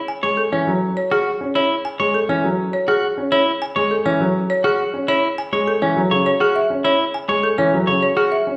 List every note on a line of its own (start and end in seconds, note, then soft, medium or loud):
0.08 0.28 G#5 medium
0.23 0.42 G#3 medium
0.23 0.42 C#5 medium
0.37 0.57 A4 soft
0.52 0.72 E3 medium
0.52 0.72 C#4 soft
0.52 0.72 C#5 medium
0.67 0.86 F#3 medium
0.97 1.16 C#5 medium
1.11 1.31 F#4 medium
1.11 1.31 G#4 medium
1.41 1.60 C#4 medium
1.55 1.75 E4 medium
1.55 1.75 C#5 medium
1.85 2.04 G#5 medium
2.00 2.19 G#3 medium
2.00 2.19 C#5 medium
2.14 2.33 A4 medium
2.29 2.48 E3 medium
2.29 2.48 C#4 medium
2.29 2.48 C#5 medium
2.44 2.63 F#3 medium
2.73 2.92 C#5 medium
2.88 3.07 F#4 medium
2.88 3.07 G#4 medium
3.18 3.37 C#4 medium
3.32 3.51 E4 medium
3.32 3.51 C#5 medium
3.62 3.81 G#5 medium
3.76 3.95 G#3 medium
3.76 3.95 C#5 medium
3.91 4.10 A4 medium
4.05 4.25 E3 medium
4.05 4.25 C#4 medium
4.05 4.25 C#5 medium
4.21 4.39 F#3 medium
4.50 4.69 C#5 medium
4.64 4.83 F#4 medium
4.64 4.83 G#4 medium
4.94 5.13 C#4 medium
5.08 5.28 E4 medium
5.08 5.28 C#5 medium
5.38 5.57 G#5 medium
5.52 5.72 G#3 medium
5.52 5.72 C#5 medium
5.68 5.86 A4 medium
5.82 6.01 E3 medium
5.82 6.01 C#4 medium
5.82 6.01 C#5 medium
5.96 6.16 F#3 medium
6.11 6.30 C#3 medium
6.11 6.30 C#5 medium
6.26 6.45 C#5 medium
6.40 6.60 F#4 medium
6.40 6.60 G#4 medium
6.56 6.75 E5 medium
6.70 6.89 C#4 medium
6.84 7.04 E4 medium
6.84 7.04 C#5 medium
7.14 7.33 G#5 medium
7.29 7.48 G#3 medium
7.29 7.48 C#5 medium
7.44 7.63 A4 medium
7.58 7.78 E3 medium
7.58 7.77 C#4 medium
7.58 7.77 C#5 medium
7.74 7.92 F#3 medium
7.87 8.07 C#3 medium
7.87 8.07 C#5 medium
8.03 8.22 C#5 medium
8.17 8.36 F#4 medium
8.17 8.36 G#4 medium
8.32 8.51 E5 medium
8.47 8.57 C#4 soft